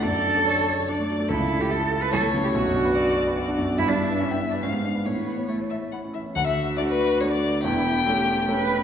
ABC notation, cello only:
X:1
M:3/4
L:1/16
Q:1/4=143
K:D
V:1 name="Cello"
A8- A2 z2 | E3 G A3 B A3 G | F8- F2 z2 | E D3 C B,2 D C B,3 |
B,4 A,4 z4 | F12 | E4 G4 B4 |]